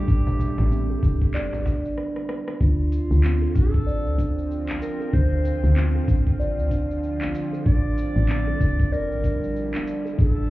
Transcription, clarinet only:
0.00 1.97 G4 loud
2.60 3.57 F4 medium
3.55 4.50 A4 loud
4.82 5.15 A#4 loud
5.13 6.08 C5 loud
7.66 8.94 D5 loud
8.93 9.87 A#4 loud
10.19 10.50 A4 loud

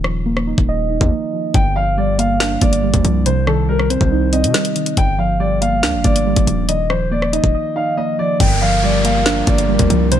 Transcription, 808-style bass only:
0.00 0.54 D#1 loud
0.58 0.99 D#1 loud
1.01 1.11 D#2 loud
1.54 2.58 G1 loud
2.62 2.93 G1 loud
2.94 3.04 D2 loud
3.05 3.97 C2 loud
4.01 4.45 C2 loud
4.44 4.54 C3 loud
4.97 5.84 G1 loud
5.83 5.95 D2 loud
5.94 6.04 G1 loud
6.05 6.35 G1 loud
6.37 6.47 G1 loud
6.47 7.40 D#1 loud
7.44 7.54 D#1 loud
8.40 9.43 G1 loud
9.47 9.78 G1 loud
9.79 9.89 D2 loud
9.90 10.20 C2 loud

